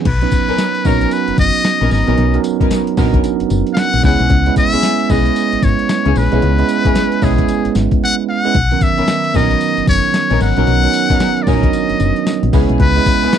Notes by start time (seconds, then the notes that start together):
0.05 B1 B4, kick, closed hi-hat, crash
0.21 F#3 B3 C#4 D#4 B4, closed hi-hat
0.32 kick, closed hi-hat, tambourine
0.48 A#1 B3 C#4 D#4 A#4, closed hi-hat
0.58 snare, closed hi-hat, tambourine
0.75 closed hi-hat
0.85 A#1 F#3 B3 C#4 D#4 F#4 A#4, kick, open hi-hat, tambourine
1.01 closed hi-hat
1.11 B4, closed hi-hat, tambourine
1.28 F#1, closed hi-hat
1.38 F#1 D#5, kick, closed hi-hat, tambourine
1.54 closed hi-hat
1.65 snare, closed hi-hat, tambourine
1.81 A#1 B3 C#4 D#4 A#4, closed hi-hat
1.91 G#1 D#5, open hi-hat, tambourine
2.07 A#1 F#3 B3 C#4 D#4 A#4, closed hi-hat
2.18 B1, closed hi-hat
2.34 F#3 B3 C#4 D#4 A#4, closed hi-hat
2.44 closed hi-hat, tambourine
2.60 A#1 B3 C#4 D#4 A#4, kick, closed hi-hat
2.71 snare, closed hi-hat, tambourine
2.87 closed hi-hat
2.97 A#1 F#3 B3 C#4 D4 D#4 A#4, kick, open hi-hat, tambourine
3.05 D#4
3.14 kick, closed hi-hat
3.24 closed hi-hat, tambourine
3.40 F#1, closed hi-hat
3.50 F#1, closed hi-hat, tambourine
3.67 closed hi-hat
3.73 F5, snare, closed hi-hat, tambourine
3.79 F#5
3.93 A#1, closed hi-hat
4.03 C#2 G#3 B3 C#4 E4 G#4 B4 F#5, kick, open hi-hat, tambourine
4.19 B1, closed hi-hat
4.30 C#2, kick, closed hi-hat
4.46 G#3 B3 C#4 E4 B4, closed hi-hat
4.56 E5, kick, closed hi-hat, tambourine
4.72 B1 B3 C#4 E4 G#4, closed hi-hat
4.83 snare, closed hi-hat, tambourine
4.99 closed hi-hat
5.09 B1 G#3 B3 C#4 E4 G#4 B4 D#5, kick, open hi-hat, tambourine
5.26 closed hi-hat
5.36 closed hi-hat, tambourine
5.53 G#1, closed hi-hat
5.62 G#1 C#5, kick, closed hi-hat, tambourine
5.79 closed hi-hat
5.89 snare, closed hi-hat, tambourine
6.05 C#2 B3 C#4 E4 G#4, closed hi-hat
6.16 A#1 B4, open hi-hat, tambourine
6.32 B1 G#3 B3 C#4 E4 G#4 B4, closed hi-hat
6.42 C#2, closed hi-hat
6.59 G#3 B3 C#4 E4 B4, closed hi-hat
6.69 closed hi-hat, tambourine
6.85 B1 B3 C#4 E4 G#4, kick, closed hi-hat
6.95 snare, closed hi-hat, tambourine
7.12 closed hi-hat
7.22 B1 G#3 B3 C#4 E4 G#4 B4, kick, open hi-hat, tambourine
7.38 kick, closed hi-hat
7.48 closed hi-hat, tambourine
7.65 G#1, closed hi-hat
7.75 G#1, snare, closed hi-hat, tambourine
7.91 kick, closed hi-hat
8.03 F#5
8.29 F#5
8.45 G#3 B3 C#4 E4 B4
8.55 B1, kick, closed hi-hat
8.71 D#3 F#3 B3 C#4 A#4, closed hi-hat
8.81 E5, kick, closed hi-hat, tambourine
8.97 A#1 B3 C#4 D#4 A#4, closed hi-hat
9.08 snare, closed hi-hat, tambourine
9.24 closed hi-hat
9.34 A#1 F#3 B3 C#4 D#4 A#4 D#5, kick, open hi-hat, tambourine
9.51 closed hi-hat
9.61 closed hi-hat, tambourine
9.77 F#1, closed hi-hat
9.87 F#1 C#5, kick, closed hi-hat, tambourine
10.04 closed hi-hat
10.14 snare, closed hi-hat, tambourine
10.30 A#1 B3 C#4 D#4 A#4, closed hi-hat
10.40 G#1 F#5, open hi-hat, tambourine
10.57 A#1 F#3 B3 C#4 D#4 A#4, closed hi-hat
10.67 B1, closed hi-hat
10.83 F#3 B3 C#4 D#4 A#4, closed hi-hat
10.93 closed hi-hat, tambourine
11.10 A#1 B3 C#4 D#4 A#4, kick, closed hi-hat
11.20 snare, closed hi-hat, tambourine
11.37 closed hi-hat
11.43 B3 C#4 D5, open hi-hat
11.47 A#1 F#3 B3 C#4 D4 D#4 A#4 D#5, kick, tambourine
11.54 D#4
11.63 kick, closed hi-hat
11.73 closed hi-hat, tambourine
11.90 F#1, closed hi-hat
12.00 F#1, closed hi-hat, tambourine
12.16 closed hi-hat
12.27 snare, closed hi-hat, tambourine
12.43 A#1, closed hi-hat
12.53 C#2 G#3 B3 C#4 E4 G#4 B4, kick, open hi-hat, tambourine
12.69 B1, closed hi-hat
12.80 C#2 B4, kick, closed hi-hat
12.96 G#3 B3 C#4 E4 B4, closed hi-hat
13.06 kick, closed hi-hat, tambourine
13.22 B1 B3 C#4 E4 G#4, closed hi-hat
13.33 snare, closed hi-hat, tambourine